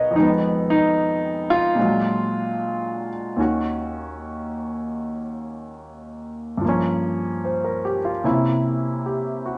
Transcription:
0.00 0.12 B2 soft
0.00 0.14 F#3 soft
0.00 0.14 B3 soft
0.00 0.16 C#4 soft
0.00 0.14 D#4 soft
0.00 0.17 F4 soft
0.00 0.17 F#4 medium
0.00 0.16 A#4 soft
0.00 0.17 B4 medium
0.00 0.17 C#5 soft
0.00 0.23 D#5 medium
0.00 0.16 F5 soft
0.11 1.75 F2 soft
0.11 1.77 D#3 soft
0.16 1.75 G#3 soft
0.16 0.28 D#4 medium
0.22 1.80 B3 medium
0.70 1.47 D#4 medium
1.50 3.08 F4 loud
1.75 3.38 A#2 medium
1.75 3.38 G#3 soft
1.75 3.39 D4 soft
1.80 3.40 F#3 medium
3.36 6.61 D#2 soft
3.36 6.62 D#3 soft
3.36 6.63 C#4 soft
3.41 6.63 F#4 medium
6.57 8.22 G2 medium
6.57 8.24 F3 soft
6.65 8.23 A#3 medium
6.65 8.23 C#4 medium
7.44 7.82 C5 soft
7.64 7.99 A#4 soft
7.85 8.09 G4 soft
8.05 8.33 F4 soft
8.24 9.58 C3 soft
8.24 9.58 A#3 soft
8.24 9.58 C#4 soft
8.24 9.58 E4 medium
9.06 9.58 G4 soft
9.46 9.58 F#4 soft

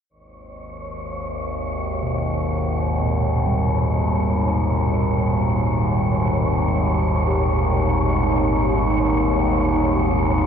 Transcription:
0.10 10.46 G#1 medium
0.10 10.46 D#2 medium
0.10 10.46 C#5 medium
2.03 3.18 B2 soft
2.99 8.70 A#2 medium
3.46 9.17 G3 medium
7.27 8.18 G4 medium
8.23 10.46 D#4 medium

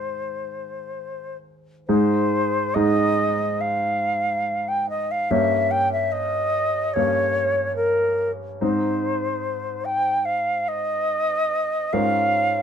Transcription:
0.00 1.81 G#2 soft
0.00 1.82 G#3 soft
0.00 1.82 D#4 soft
0.00 1.83 G#4 soft
0.00 1.37 C5 soft
1.88 2.73 G#2 soft
1.88 2.73 G#3 soft
1.88 2.73 D#4 soft
1.88 2.73 G#4 soft
1.88 2.76 C5 medium
2.74 5.27 G#2 medium
2.74 5.27 G#3 soft
2.74 5.27 D#4 soft
2.74 5.27 G#4 soft
2.74 3.62 D#5 medium
3.61 4.70 F5 medium
4.68 4.89 G5 medium
4.89 5.13 D#5 medium
5.11 5.32 F5 medium
5.31 6.92 G2 soft
5.31 6.92 A#3 soft
5.31 6.92 C#4 soft
5.31 6.92 C#5 soft
5.31 5.73 E5 medium
5.71 5.92 G5 medium
5.92 6.14 E5 medium
6.12 6.95 D#5 medium
6.94 8.58 G2 soft
6.94 8.57 A#3 soft
6.94 8.57 C#4 soft
6.94 7.76 C#5 medium
6.94 8.57 C#5 soft
7.76 8.31 A#4 medium
8.61 11.89 G#2 soft
8.61 11.89 C4 soft
8.61 11.89 D#4 soft
8.61 9.87 C5 medium
8.61 11.89 C5 soft
9.85 10.27 G5 medium
10.25 10.70 F5 medium
10.68 11.94 D#5 medium
11.93 12.62 G#2 soft
11.93 12.62 C#4 soft
11.93 12.62 F4 soft
11.93 12.62 A#4 soft
11.93 12.62 F5 medium

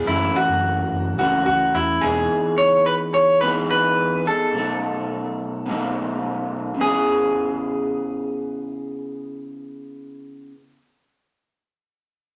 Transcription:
0.05 0.29 F#1 loud
0.05 1.17 F#2 medium
0.05 1.19 E3 medium
0.05 0.36 E4 medium
0.09 1.19 A3 medium
0.09 1.20 C#4 medium
0.36 1.18 F#4 loud
0.48 0.82 F#1 loud
0.91 1.19 F#1 medium
1.18 1.42 C#2 loud
1.18 1.46 F#2 medium
1.18 1.47 E3 medium
1.18 1.48 A3 medium
1.18 1.46 C#4 medium
1.18 1.45 F#4 medium
1.46 1.69 C#2 loud
1.46 2.07 E3 soft
1.46 2.04 A3 soft
1.46 2.03 C#4 medium
1.46 1.75 F#4 loud
1.75 1.97 E2 loud
1.75 2.04 E4 loud
2.01 2.26 E1 loud
2.01 3.44 D#4 medium
2.01 2.54 G#4 loud
2.01 3.43 G#4 medium
2.06 3.41 E3 medium
2.06 3.43 B3 medium
2.58 2.86 C#5 loud
2.86 2.94 B4 loud
3.14 3.41 C#5 loud
3.41 4.27 E3 medium
3.41 4.29 B3 medium
3.41 4.27 D#4 loud
3.41 4.24 G#4 medium
3.41 3.49 B4 loud
3.71 4.27 B4 loud
4.25 4.55 D#4 soft
4.25 4.54 G#4 medium
4.25 6.47 A4 medium
4.29 4.56 B3 soft
4.53 5.65 B2 medium
4.53 5.67 F#3 medium
4.57 5.68 A3 medium
4.57 5.68 D#4 medium
5.66 6.74 B2 loud
5.66 6.80 F#3 loud
5.66 6.80 A3 loud
5.71 6.81 D#4 loud
6.75 10.51 C#3 medium
6.81 10.54 B3 medium
6.81 10.50 G#4 medium
6.85 10.57 E4 medium
6.90 10.59 G#4 medium

